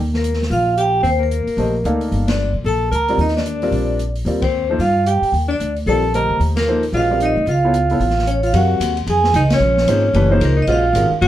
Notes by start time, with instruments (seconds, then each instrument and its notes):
Already playing: upright bass D#2
0.14 alto saxophone A#3, vibraphone A#4, snare
0.24 closed hi-hat
0.34 snare
0.42 snare
0.50 upright bass A#1, alto saxophone F4, vibraphone F5, open hi-hat
0.77 alto saxophone G4, vibraphone G5, closed hi-hat
1.03 upright bass D#2, alto saxophone C4, open hi-hat
1.07 vibraphone C5
1.19 alto saxophone A#3
1.23 vibraphone A#4
1.31 closed hi-hat
1.47 muted upright bass stroke, open hi-hat
1.57 upright bass A#1, grand piano A3 D4 G4 C5 D#5, open hi-hat
1.84 upright bass D2, grand piano A#3 D#4 A4 D5 F5, closed hi-hat
2.01 open hi-hat
2.12 upright bass G1, open hi-hat
2.27 alto saxophone D4, vibraphone D5, snare, ride
2.54 upright bass A#2
2.64 upright bass A#1, alto saxophone A4, vibraphone A5, open hi-hat
2.91 upright bass D2, alto saxophone A#4, closed hi-hat
2.95 vibraphone A#5
3.08 grand piano G3 C4 F4 A#4 D5, open hi-hat
3.18 upright bass D#2, alto saxophone D#4, vibraphone D#5, open hi-hat
3.28 snare
3.37 alto saxophone D4, vibraphone D5, snare
3.46 closed hi-hat
3.62 grand piano G3 C4 F4 A#4 D5, open hi-hat
3.71 upright bass A#1, open hi-hat
3.99 closed hi-hat
4.16 open hi-hat
4.25 upright bass D#2, grand piano G3 C4 F4 A#4 D5, open hi-hat
4.42 alto saxophone C4, vibraphone C5, kick, ride
4.70 grand piano F3 A#3 D#4 A4 C5
4.79 upright bass G2, alto saxophone F4, vibraphone F5, open hi-hat
5.06 alto saxophone G4, vibraphone G5, closed hi-hat
5.22 muted upright bass stroke, open hi-hat
5.32 upright bass D#2, open hi-hat
5.48 alto saxophone D4, vibraphone D5
5.60 upright bass D2, closed hi-hat
5.76 open hi-hat
5.86 upright bass A#1, grand piano G3 C4 F4 A#4 D5, alto saxophone A4, vibraphone A5, open hi-hat
6.14 grand piano D3 A3 G4 C5 D#5, alto saxophone A#4, vibraphone A#5, closed hi-hat
6.29 upright bass D2
6.40 upright bass D#2, open hi-hat
6.56 alto saxophone A#3, vibraphone A#4, snare, ride
6.68 grand piano F3 A#3 D#4 A4 C5
6.83 open hi-hat
6.92 upright bass A#1, grand piano G#3 C#4 F#4 B4 D#5, alto saxophone F4, open hi-hat
6.97 vibraphone F5
7.10 grand piano G3 C4 F4 A#4 D5
7.20 alto saxophone D#4, closed hi-hat
7.25 vibraphone D#5
7.36 upright bass D2
7.46 upright bass C#2, alto saxophone F4, open hi-hat
7.51 vibraphone F5
7.65 grand piano B3 E4 F4 A4 C#5
7.74 closed hi-hat
7.90 grand piano B3 E4 F4 A4 C#5, open hi-hat
8.00 upright bass A1, open hi-hat
8.10 snare
8.19 snare
8.27 alto saxophone C#4, closed hi-hat
8.31 vibraphone C#5
8.43 alto saxophone F4, vibraphone F5, open hi-hat
8.53 upright bass F#2, grand piano C3 F#3 F#4 A#4 C#5, alto saxophone F#4, vibraphone F#5, ride
8.80 upright bass D#2, hi-hat pedal, ride
8.97 ride
9.07 upright bass F2, alto saxophone G#4, vibraphone G#5, ride
9.24 snare
9.34 upright bass C#2, alto saxophone D#4, vibraphone D#5, hi-hat pedal, ride
9.50 alto saxophone C#4, vibraphone C#5, snare, ride
9.60 upright bass A#1
9.78 snare
9.87 upright bass G#1, grand piano F3 A#3 D#4 G#4 C5, hi-hat pedal, ride
10.14 upright bass F#1, grand piano E3 A3 D4 G4 B4, ride
10.31 grand piano F3 A#3 D#4 G#4 C5
10.40 upright bass C#2, alto saxophone A#3, hi-hat pedal, ride
10.45 vibraphone A#4
10.56 alto saxophone D#4
10.62 vibraphone D#5
10.67 upright bass A#1, grand piano G#3 C#4 F#4 C5 D#5, alto saxophone F4, ride
10.72 vibraphone F5
10.93 upright bass G#1, grand piano D#3 G#3 C#4 F#4 A#4, hi-hat pedal, ride
11.10 muted upright bass stroke
11.21 upright bass F#1, alto saxophone F#4, ride